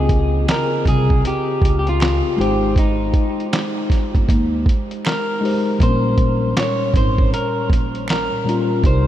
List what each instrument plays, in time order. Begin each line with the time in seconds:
Already playing: upright bass C#2, tine electric piano C#3 C4 F4 D#5, clean electric guitar G#4
0.09 kick, closed hi-hat
0.48 clean electric guitar A#4, finger snap, snare, clap, closed hi-hat
0.85 upright bass C2, clean electric guitar G#4, kick, closed hi-hat
1.10 kick
1.25 clean electric guitar G4, closed hi-hat
1.62 upright bass C#2, kick, closed hi-hat
1.79 clean electric guitar G4
1.87 clean electric guitar F4, closed hi-hat
2.00 finger snap, snare, clap, closed hi-hat
2.37 upright bass G#1, tine electric piano G#3 D#4 G4, clean electric guitar G4
2.41 tine electric piano C5, closed hi-hat
2.76 clean electric guitar D#4, kick, closed hi-hat
3.14 kick, closed hi-hat
3.40 closed hi-hat
3.53 finger snap, snare, clap, closed hi-hat
3.90 kick, snare, closed hi-hat
4.15 upright bass G1, kick, closed hi-hat
4.29 upright bass D#2, kick, closed hi-hat
4.66 kick, closed hi-hat
4.91 closed hi-hat
5.05 clean electric guitar A#4, finger snap, snare, clap, closed hi-hat
5.41 tine electric piano G#3 D#4 G4
5.45 tine electric piano C5, open hi-hat
5.79 upright bass A#1, tine electric piano A#2 G3 C4, kick, closed hi-hat
5.83 tine electric piano A#4, clean electric guitar C5
5.88 tine electric piano C#4
6.18 kick, closed hi-hat
6.57 clean electric guitar C#5, finger snap, snare, clap, closed hi-hat
6.94 upright bass G#1, clean electric guitar C5, kick, closed hi-hat
7.18 kick
7.34 clean electric guitar A#4, closed hi-hat
7.70 upright bass A#1, kick, closed hi-hat
7.95 closed hi-hat
8.08 clean electric guitar A#4, finger snap, snare, clap, closed hi-hat
8.45 tine electric piano A#2 G3 C#4
8.49 tine electric piano F4, closed hi-hat
8.82 upright bass C2, tine electric piano C3 G3 D#4, clean electric guitar C5, kick, closed hi-hat
8.87 tine electric piano A#4